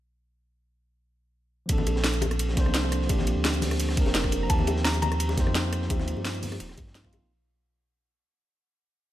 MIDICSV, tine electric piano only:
0, 0, Header, 1, 2, 480
1, 0, Start_track
1, 0, Key_signature, -2, "major"
1, 0, Tempo, 350877
1, 2316, Time_signature, 4, 2, 24, 8
1, 12478, End_track
2, 0, Start_track
2, 0, Title_t, "Tine electric piano"
2, 0, Program_c, 0, 4
2, 2269, Note_on_c, 0, 53, 79
2, 2295, Note_on_c, 0, 58, 73
2, 2318, Note_on_c, 0, 60, 73
2, 2341, Note_on_c, 0, 62, 77
2, 2364, Note_on_c, 0, 69, 92
2, 2594, Control_c, 0, 64, 127
2, 3448, Note_off_c, 0, 53, 0
2, 3465, Note_on_c, 0, 53, 98
2, 3471, Note_off_c, 0, 58, 0
2, 3487, Note_on_c, 0, 58, 91
2, 3489, Note_off_c, 0, 60, 0
2, 3501, Note_off_c, 0, 62, 0
2, 3511, Note_on_c, 0, 60, 90
2, 3512, Note_off_c, 0, 69, 0
2, 3535, Note_on_c, 0, 62, 94
2, 3559, Note_on_c, 0, 72, 110
2, 4173, Note_off_c, 0, 53, 0
2, 4190, Note_on_c, 0, 53, 85
2, 4194, Note_off_c, 0, 58, 0
2, 4206, Note_off_c, 0, 60, 0
2, 4214, Note_on_c, 0, 58, 80
2, 4218, Note_off_c, 0, 62, 0
2, 4230, Note_off_c, 0, 72, 0
2, 4236, Note_on_c, 0, 60, 79
2, 4260, Note_on_c, 0, 62, 79
2, 4287, Note_on_c, 0, 67, 96
2, 5371, Note_off_c, 0, 53, 0
2, 5387, Note_on_c, 0, 53, 90
2, 5397, Note_off_c, 0, 58, 0
2, 5408, Note_off_c, 0, 60, 0
2, 5411, Note_on_c, 0, 58, 83
2, 5420, Note_off_c, 0, 62, 0
2, 5434, Note_off_c, 0, 67, 0
2, 5435, Note_on_c, 0, 60, 84
2, 5458, Note_on_c, 0, 62, 82
2, 5484, Note_on_c, 0, 70, 101
2, 6090, Note_off_c, 0, 53, 0
2, 6106, Note_on_c, 0, 53, 82
2, 6116, Note_off_c, 0, 58, 0
2, 6128, Note_off_c, 0, 60, 0
2, 6131, Note_on_c, 0, 58, 77
2, 6139, Note_off_c, 0, 62, 0
2, 6152, Note_off_c, 0, 70, 0
2, 6152, Note_on_c, 0, 60, 78
2, 6174, Control_c, 0, 64, 0
2, 6177, Note_on_c, 0, 63, 76
2, 6202, Note_on_c, 0, 67, 90
2, 6435, Control_c, 0, 64, 127
2, 7287, Note_off_c, 0, 53, 0
2, 7303, Note_on_c, 0, 53, 101
2, 7316, Note_off_c, 0, 58, 0
2, 7326, Note_off_c, 0, 60, 0
2, 7330, Note_on_c, 0, 58, 92
2, 7339, Note_off_c, 0, 63, 0
2, 7351, Note_off_c, 0, 67, 0
2, 7353, Note_on_c, 0, 60, 90
2, 7376, Note_on_c, 0, 63, 92
2, 7401, Note_on_c, 0, 72, 115
2, 8004, Note_off_c, 0, 53, 0
2, 8021, Note_on_c, 0, 53, 84
2, 8028, Note_off_c, 0, 58, 0
2, 8044, Note_on_c, 0, 58, 80
2, 8047, Note_off_c, 0, 60, 0
2, 8058, Note_off_c, 0, 63, 0
2, 8071, Note_off_c, 0, 72, 0
2, 8072, Note_on_c, 0, 60, 80
2, 8095, Note_on_c, 0, 63, 80
2, 8117, Note_on_c, 0, 65, 94
2, 9220, Note_off_c, 0, 53, 0
2, 9232, Note_off_c, 0, 58, 0
2, 9246, Note_off_c, 0, 60, 0
2, 9258, Note_off_c, 0, 63, 0
2, 9269, Note_off_c, 0, 65, 0
2, 9619, Note_on_c, 0, 53, 95
2, 9630, Note_on_c, 0, 58, 90
2, 9642, Note_on_c, 0, 60, 86
2, 9654, Note_on_c, 0, 63, 88
2, 9666, Note_on_c, 0, 65, 112
2, 9957, Note_off_c, 0, 53, 0
2, 9963, Note_off_c, 0, 58, 0
2, 9969, Note_off_c, 0, 60, 0
2, 9975, Note_off_c, 0, 63, 0
2, 9981, Note_off_c, 0, 65, 0
2, 10015, Control_c, 0, 64, 0
2, 12478, End_track
0, 0, End_of_file